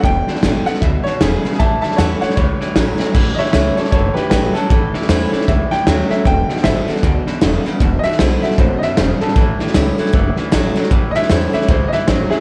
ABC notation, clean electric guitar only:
X:1
M:4/4
L:1/8
Q:"Swing" 1/4=155
K:A
V:1 name="Clean electric guitar" clef=bass
[E,,B,,] [E,,B,,] [E,,B,,] [E,,B,,] [E,,B,,] [E,,B,,] [E,,C,] [E,,C,] | [A,,E,] [A,,E,] [A,,E,] [A,,E,] [A,,E,] [A,,E,] [A,,F,] [A,,F,] | [A,,E,] [A,,E,] [A,,E,] [A,,E,] [A,,E,] [A,,E,] [A,,F,] [A,,F,] | [A,,E,] [A,,E,] [A,,E,] [A,,E,] [A,,E,] [A,,E,] [A,,F,] [A,,F,] |
[E,,B,,] [E,,B,,] [E,,B,,] [E,,B,,] [E,,B,,] [E,,B,,] [E,,C,] [E,,C,] | [E,,B,,] [E,,B,,] [E,,B,,] [E,,B,,] [E,,B,,] [E,,B,,] [E,,C,] [E,,C,] | [A,,E,] [A,,E,] [A,,E,] [A,,E,] [A,,E,] [A,,E,] [A,,F,] [A,,F,] | [A,,E,] [A,,E,] [A,,E,] [A,,E,] [A,,E,] [A,,E,] [A,,F,] [A,,F,] |]